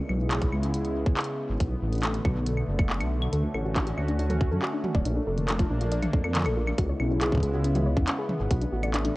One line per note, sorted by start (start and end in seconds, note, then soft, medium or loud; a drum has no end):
0.00 1.58 C#3 medium
0.00 1.58 G#3 medium
0.00 3.29 B3 medium
0.00 1.58 E4 medium
0.09 0.47 B1 medium
0.09 claves medium
0.31 clap loud
0.31 closed hi-hat medium
0.41 kick loud
0.41 closed hi-hat medium
0.52 1.08 C#2 medium
0.52 claves soft
0.63 closed hi-hat medium
0.74 closed hi-hat medium
0.85 closed hi-hat soft
1.06 1.14 E2 medium
1.06 kick loud
1.17 clap loud
1.17 closed hi-hat soft
1.21 closed hi-hat soft
1.24 closed hi-hat medium
1.49 1.57 G#1 loud
1.60 1.75 B1 loud
1.60 5.02 D3 medium
1.60 6.74 A3 medium
1.60 kick loud
1.60 closed hi-hat medium
1.82 2.19 A1 medium
1.93 closed hi-hat soft
1.95 closed hi-hat soft
1.98 closed hi-hat soft
2.01 clap loud
2.01 closed hi-hat soft
2.03 closed hi-hat medium
2.14 closed hi-hat soft
2.25 2.62 B1 medium
2.25 kick loud
2.25 claves soft
2.46 closed hi-hat medium
2.57 claves medium
2.68 3.02 F#1 loud
2.79 kick loud
2.79 claves medium
2.90 clap loud
3.00 3.27 B1 medium
3.00 closed hi-hat soft
3.00 claves medium
3.22 claves medium
3.33 3.47 D2 loud
3.33 5.04 C#4 medium
3.33 5.04 F#4 medium
3.33 3.42 A4 medium
3.33 closed hi-hat medium
3.44 3.49 D3 medium
3.54 3.92 A1 medium
3.54 3.64 A4 medium
3.54 claves medium
3.65 3.71 F#4 medium
3.76 3.86 D4 medium
3.76 kick loud
3.76 clap loud
3.76 closed hi-hat medium
3.87 3.92 F#4 medium
3.87 closed hi-hat soft
3.98 4.53 D2 medium
3.98 4.03 D5 medium
3.98 claves medium
4.08 4.18 D4 medium
4.08 closed hi-hat soft
4.19 4.28 D4 medium
4.19 closed hi-hat medium
4.30 4.39 A4 medium
4.30 closed hi-hat soft
4.30 mid tom medium
4.41 4.46 D3 medium
4.41 kick loud
4.51 4.59 F#2 loud
4.51 4.61 A4 medium
4.62 4.68 F#4 medium
4.62 clap loud
4.73 4.83 D4 medium
4.84 4.89 F#4 medium
4.84 mid tom medium
4.95 5.02 D1 loud
4.95 5.00 D5 medium
4.95 kick loud
5.05 5.20 A#1 loud
5.05 6.76 A#3 medium
5.05 5.15 D4 medium
5.05 6.76 D4 medium
5.05 closed hi-hat medium
5.16 5.25 D4 medium
5.27 5.65 F1 medium
5.27 5.36 A4 medium
5.38 5.43 D3 medium
5.38 closed hi-hat soft
5.49 5.58 A4 medium
5.49 clap loud
5.49 closed hi-hat medium
5.59 5.65 F4 medium
5.59 kick loud
5.59 closed hi-hat soft
5.70 6.08 A#1 medium
5.70 5.81 D4 medium
5.81 5.87 F4 medium
5.81 closed hi-hat soft
5.92 5.97 D5 medium
5.92 closed hi-hat medium
6.03 6.12 D4 medium
6.03 closed hi-hat soft
6.03 mid tom loud
6.03 claves medium
6.13 6.47 F2 loud
6.13 6.23 D4 medium
6.13 kick loud
6.24 6.33 A4 medium
6.24 claves medium
6.35 6.41 D3 medium
6.35 clap loud
6.35 closed hi-hat medium
6.38 clap medium
6.40 clap medium
6.43 6.73 A#1 medium
6.43 6.55 A4 medium
6.43 clap medium
6.43 closed hi-hat soft
6.43 claves medium
6.57 6.62 F4 medium
6.67 6.78 D4 medium
6.67 claves medium
6.78 6.93 C#2 loud
6.78 8.49 C#3 medium
6.78 8.49 G#3 medium
6.78 9.16 B3 medium
6.78 8.49 E4 medium
6.78 6.84 F#4 medium
6.78 kick loud
6.78 closed hi-hat medium
6.89 6.95 C#5 medium
7.00 7.37 B1 medium
7.00 7.09 C#4 medium
7.00 claves medium
7.11 7.20 C#4 medium
7.21 7.31 G#4 medium
7.21 clap loud
7.21 closed hi-hat medium
7.32 7.38 C#3 medium
7.32 kick medium
7.35 kick medium
7.37 kick medium
7.40 7.98 C#2 medium
7.40 7.52 G#4 medium
7.40 kick soft
7.40 closed hi-hat medium
7.54 7.59 F#4 medium
7.64 7.75 C#4 medium
7.64 closed hi-hat medium
7.75 7.81 F#4 medium
7.75 closed hi-hat soft
7.75 mid tom loud
7.86 7.92 C#5 medium
7.97 8.04 E2 loud
7.97 8.06 C#4 medium
7.97 kick loud
8.08 8.17 C#4 medium
8.08 clap loud
8.08 closed hi-hat medium
8.18 8.28 G#4 medium
8.29 8.35 C#3 medium
8.29 mid tom medium
8.40 8.47 G#1 loud
8.40 8.49 G#4 medium
8.51 8.65 B1 loud
8.51 9.16 D3 medium
8.51 9.16 A3 medium
8.51 8.56 F#4 medium
8.51 kick loud
8.51 closed hi-hat medium
8.62 8.72 D4 medium
8.62 closed hi-hat soft
8.72 9.10 A1 medium
8.72 8.78 F#4 medium
8.83 8.89 D5 medium
8.83 closed hi-hat soft
8.83 claves medium
8.94 9.03 D4 medium
8.94 clap loud
8.94 closed hi-hat medium
9.05 9.14 D4 medium
9.05 closed hi-hat medium